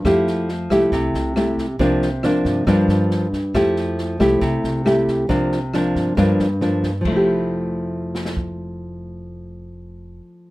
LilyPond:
<<
  \new Staff \with { instrumentName = "Nylon-string guitar" } { \time 4/4 \key f \major \tempo 4 = 137 << { <a e' g'>4 r8 <a e' g'>4. <a e' g'>8 r8 | <f bes d'>8 r8 <f bes d'>4 <f bes d'>4. r8 | <a e' g'>4. <a e' g'>4. <a e' g'>4 | <f bes d'>8 r8 <f bes d'>4 <f bes d'>8 r8 <f bes d'>8 r8 |
<f a e' g'>1~ | <f a e' g'>1 | } \\ { f2 c2 | c2 g,2 | f2 c2 | c2 g,2 |
r1 | r1 | } >> }
  \new Staff \with { instrumentName = "Upright bass" } { \clef bass \time 4/4 \key f \major f,4. c,8 c,8 c,4. | c,4. g,8 g,8 g,4. | f,4. c,8 c,8 c,4. | c,4. g,8 g,8 g,4. |
f,,1~ | f,,1 | }
  \new DrumStaff \with { instrumentName = "Drums" } \drummode { \time 4/4 <bd ss sn>8 sn8 sn8 <bd ss sn>8 <bd sn>8 sn8 <ss sn>8 <bd sn>8 | <bd sn>8 sn8 <ss sn>8 <bd sn>8 <bd ss sn>8 sn8 sn8 <bd sn>8 | <bd ss sn>8 sn8 sn8 <bd ss sn>8 <bd sn>8 sn8 <ss sn>8 <bd sn>8 | <bd sn>8 sn8 <ss sn>8 <bd sn>8 <bd ss sn>8 sn8 sn8 <bd sn>8 |
<cymc bd>4 r4 r8 sn16 sn16 bd4 | r4 r4 r4 r4 | }
>>